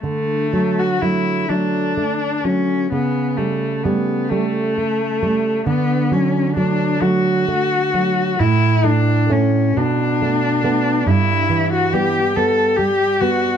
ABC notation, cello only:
X:1
M:6/8
L:1/16
Q:3/8=44
K:D
V:1 name="Cello"
A,3 F E2 D4 C2 | B,2 A,2 B,2 A,6 | B,2 C2 D2 F6 | E2 D2 C2 D6 |
E3 F G2 A2 G2 F2 |]